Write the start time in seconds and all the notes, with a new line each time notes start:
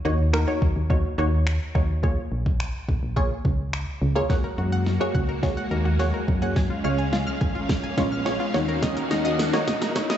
0.05 D#2 A#3 D#4 F#4 C#5
0.33 A#3 D#4 F#4 A#4, finger snap
0.47 A#3 D#4 F#4 C#5
0.62 D#2, kick
0.76 D#2
0.90 A#3 D#4 F#4 C#5, kick
1.18 D#2 A#3 D#4 F#4 C#5
1.47 finger snap
1.75 D#2 A#3 D#4 F#4 C#5, kick
2.03 A#3 F4 G#4 C#5, kick
2.32 A#1
2.46 kick
2.60 finger snap
2.89 A#1, kick
3.03 A#1
3.16 A#3 F4 G#4 C#5, kick
3.45 C#2, kick
3.73 finger snap
4.02 C#2
4.15 A#3 F4 G#4 C#5
4.29 G#3 A#3 F#4 G#4 C#5 F#5, kick, snare, riser
4.44 A#4
4.58 F#2 F#4
4.72 F#5
4.86 snare
5.00 A#3 F#4 G#4 C#5
5.15 C#2 F#5, kick
5.29 A#4
5.43 A#3 F#4 G#4 C#5, kick, snare
5.57 F#5
5.71 D#2 A#4
5.85 F#4
5.99 A#3 F#4 G#4 C#5 F#5, snare
6.14 A#4
6.28 F#2, kick
6.42 A#3 F#4 G#4 C#5 F#5
6.56 C#4 F5 G#5, kick, snare
6.70 F4
6.84 C#2 G#3 C#4 F4 C#5 F6
6.98 G#5
7.13 F4, snare
7.27 F6
7.41 G#1 G#5, kick
7.55 F4
7.69 F6, kick, snare
7.84 G#5
7.97 A#1 G#3 C#4 F4 C#5, kick, snare
8.12 F6
8.25 G#3 C#4 F4 C#5 G#5, snare
8.40 F4
8.54 D#2 D#3 A#3 D#4 F#4 C#5, snare
8.68 A#4
8.82 D#5, kick, snare, closed hi-hat, tambourine
8.97 A#4, closed hi-hat
9.11 D#2 D#4, snare, closed hi-hat, tambourine
9.25 D#5, closed hi-hat
9.39 snare, closed hi-hat, tambourine
9.53 A#3 D#4 F#4 C#5, snare, closed hi-hat
9.67 A#1 D#5, kick, snare, closed hi-hat, tambourine
9.81 A#4, snare, closed hi-hat
9.95 A#3 D#4 F#4 C#5, kick, snare, closed hi-hat, tambourine
10.10 D#5, snare, closed hi-hat